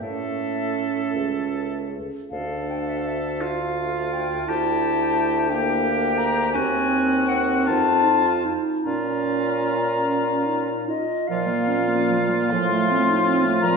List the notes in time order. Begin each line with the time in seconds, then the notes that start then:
0.00 A2 A3 C#4 A4 E5
1.15 C#2
2.31 D2 A3 D4 A4 F5
2.71 G5
2.80 F5
2.89 E5
2.97 F5
3.06 E5
3.41 F4 F5
4.13 G5
4.47 D2 E4 G4 A5
5.49 A#3 D4 G4 G5
6.18 A#5
6.52 C4 F#4 G#5
6.57 D#2
7.28 F#5
7.66 F2 D#4 F4 A5
8.04 F4
8.44 D#4
8.83 A#2 C#4 F4 A#5
8.87 C#4
10.05 C#4
10.46 D#4
10.88 F4 D#5
11.27 A#2 F3 F4 F5
11.47 A#3
11.68 C#4
11.87 A#3
12.09 F3
12.31 A#3
12.50 A2 F3 C6
12.72 A3
12.90 C4
13.10 D#4
13.26 C4
13.44 A3
13.61 A#2 F3 A#5